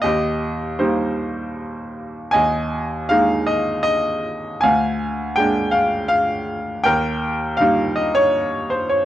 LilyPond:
<<
  \new Staff \with { instrumentName = "Grand piano" } { \time 3/4 \key ees \mixolydian \tempo 4 = 80 << { ees''4 c''4. r8 | aes''4 f''8 ees''8 ees''4 | aes''4 g''8 f''8 f''4 | g''4 f''8 ees''16 des''8. c''16 des''16 | } \\ { g'4 g'4. r8 | ees''4. r4. | f''4. r4. | bes'4. r4. | } >> }
  \new Staff \with { instrumentName = "Grand piano" } { \time 3/4 \key ees \mixolydian ees,4 <g bes ees'>2 | ees,4 <aes bes ees'>2 | d,4 <aes bes d'>2 | ees,4 <g bes ees'>2 | }
>>